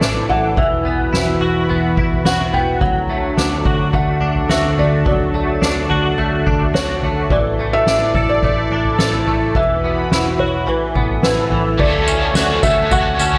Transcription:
Already playing: clean electric guitar E3 A3, analog synth pad E4 A4 D5
0.01 picked electric bass A1, clean electric guitar D4, snare
0.29 picked electric bass A1, clean electric guitar E3, felt piano F#5, floor tom
0.56 picked electric bass E1, analog synth pad E3 F#4 B4 B5, clean electric guitar E3, felt piano E5, kick, floor tom
0.85 clean electric guitar B3
0.99 floor tom
1.13 picked electric bass E1, clean electric guitar E4, snare
1.40 picked electric bass E1, clean electric guitar F#4
1.69 picked electric bass E1, clean electric guitar B3, floor tom
1.97 picked electric bass E1, clean electric guitar E4, kick
2.11 floor tom
2.25 picked electric bass E1, clean electric guitar F#4, felt piano F#5, snare
2.53 picked electric bass E1, clean electric guitar B3, felt piano G5, floor tom
2.81 picked electric bass D2, analog synth pad D3 D4 A4 A5, clean electric guitar F#3, felt piano F#5, kick, floor tom
3.10 clean electric guitar A3
3.37 picked electric bass D2, clean electric guitar D4, snare
3.65 picked electric bass D2, clean electric guitar F#4, kick, floor tom
3.93 picked electric bass D2, clean electric guitar A3, felt piano F#5, kick, floor tom
4.21 picked electric bass D2, clean electric guitar D4
4.36 floor tom
4.49 picked electric bass D2, clean electric guitar F#4, felt piano E5, snare
4.78 picked electric bass D2, clean electric guitar A3, felt piano D5, floor tom
5.06 picked electric bass D2, clean electric guitar F#3, felt piano D5, kick, floor tom
5.34 clean electric guitar A3
5.62 picked electric bass D2, clean electric guitar D4, snare
5.90 picked electric bass D2, clean electric guitar F#4, floor tom
6.18 picked electric bass D2, clean electric guitar A3, floor tom
6.46 picked electric bass D2, clean electric guitar D4, kick
6.61 floor tom
6.74 picked electric bass D2, clean electric guitar F#4, felt piano C#5, snare
7.02 picked electric bass D2, clean electric guitar A3, floor tom
7.30 picked electric bass A1, clean electric guitar E3, analog synth pad E4 D5, felt piano D5, kick, floor tom
7.59 clean electric guitar A3
7.73 felt piano E5
7.87 picked electric bass A1, clean electric guitar D4, felt piano E5, snare
8.14 picked electric bass A1, clean electric guitar A4, kick, floor tom
8.29 felt piano D5
8.42 picked electric bass A1, clean electric guitar A3, felt piano D5, kick, floor tom
8.71 picked electric bass A1, clean electric guitar D4
8.85 floor tom
8.99 picked electric bass A1, clean electric guitar A4, snare
9.26 picked electric bass A1, clean electric guitar A3, floor tom
9.55 picked electric bass E1, analog synth pad E3 F#4 B4 B5, clean electric guitar E3, felt piano E5, kick, floor tom
9.84 clean electric guitar B3
10.11 picked electric bass E1, clean electric guitar E4, snare
10.39 picked electric bass E1, clean electric guitar F#4, felt piano C#5, floor tom
10.67 picked electric bass A1, clean electric guitar E3, analog synth pad A4, felt piano B4, floor tom
10.95 picked electric bass A1, clean electric guitar B3, kick
11.10 floor tom
11.22 picked electric bass A1, clean electric guitar E4, felt piano B4, snare
11.50 picked electric bass A1, clean electric guitar E3, floor tom
11.78 picked electric bass D2, overdriven electric guitar D3 C#4 F#4 A4, clean electric guitar A3, analog synth pad A4 F#5 C#6, felt piano D5, kick, floor tom, crash
12.07 clean electric guitar C#4, overdriven electric guitar F#4 A4, tambourine
12.11 overdriven electric guitar C#4
12.34 picked electric bass D2, overdriven electric guitar D3 C#4 F#4, clean electric guitar F#4, snare, tambourine
12.39 overdriven electric guitar A4
12.63 picked electric bass D2, clean electric guitar A3, overdriven electric guitar F#4 A4, felt piano E5, kick, floor tom, tambourine
12.67 overdriven electric guitar C#4
12.91 picked electric bass D2, overdriven electric guitar D3 C#4 F#4 A4, clean electric guitar F#4, felt piano F#5, kick, floor tom, tambourine
13.18 picked electric bass D2, clean electric guitar C#4, overdriven electric guitar F#4 A4, tambourine
13.23 overdriven electric guitar C#4
13.33 floor tom

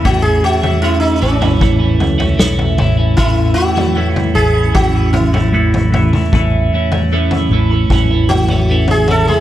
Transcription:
0.03 fretless electric bass A1, clean electric guitar A2 E3 A3 C#4 E4, sitar F#4, kick, floor tom
0.22 sitar G#4
0.43 clean electric guitar E3 A3 C#4 E4, sitar F#4
0.62 clean electric guitar A3 C#4 E4, floor tom
0.82 clean electric guitar A2 E3 A3 C#4 E4, sitar E4
1.00 sitar D#4
1.21 fretless electric bass A1, clean electric guitar E3 A3 C#4 E4, sitar C#4
1.41 clean electric guitar A3 C#4 E4, floor tom
1.60 fretless electric bass A1, clean electric guitar E3 A3 C#4 E4, kick, floor tom
1.79 clean electric guitar A3 C#4 E4
2.00 fretless electric bass C#2, floor tom
2.18 clean electric guitar A3 C#4 E4, floor tom
2.37 fretless electric bass B1, clean electric guitar A2 E3 A3 C#4 E4, snare
2.59 floor tom
2.78 fretless electric bass A1, clean electric guitar E3 A3 C#4 E4, floor tom, mid tom
2.97 clean electric guitar A3 C#4 E4
3.17 fretless electric bass A1, clean electric guitar A2 E3 A3 C#4 E4, sitar E4, kick, floor tom
3.54 clean electric guitar E3 A3 C#4 E4, sitar F#4
3.75 clean electric guitar A3 C#4 E4, floor tom
3.95 clean electric guitar A2 E3 A3 C#4 E4
4.15 sitar E4, floor tom
4.35 fretless electric bass A1, clean electric guitar E3 A3 C#4 E4, sitar G#4
4.54 clean electric guitar A3 C#4 E4
4.73 fretless electric bass A1, clean electric guitar E3 A3 C#4 E4, sitar F#4, kick, floor tom
4.94 clean electric guitar A3 C#4 E4
5.13 sitar E4, floor tom
5.33 clean electric guitar A3 C#4 E4, floor tom
5.53 clean electric guitar A2 E3 A3 C#4 E4
5.74 floor tom
5.92 clean electric guitar E3 A3 C#4 E4, floor tom
6.13 clean electric guitar A3 C#4 E4, mid tom
6.32 fretless electric bass A1, clean electric guitar A2 E3 A3 C#4 E4, kick, floor tom
6.73 clean electric guitar E3 A3 C#4 E4
6.92 clean electric guitar A3 C#4 E4, floor tom
7.12 clean electric guitar A2 E3 A3 C#4 E4
7.31 floor tom
7.49 fretless electric bass A1, clean electric guitar E3 A3 C#4
7.54 clean electric guitar E4
7.70 clean electric guitar A3 C#4 E4
7.90 fretless electric bass A1, clean electric guitar E3 A3 C#4 E4, kick, floor tom
8.11 clean electric guitar A3 C#4 E4
8.29 sitar F#4, floor tom
8.48 clean electric guitar A3 C#4 E4, floor tom
8.69 clean electric guitar A2 E3 A3 C#4 E4
8.88 sitar G#4, floor tom
9.08 clean electric guitar E3 A3 C#4 E4, sitar A4, floor tom
9.28 clean electric guitar A3 C#4 E4, sitar G#4, mid tom

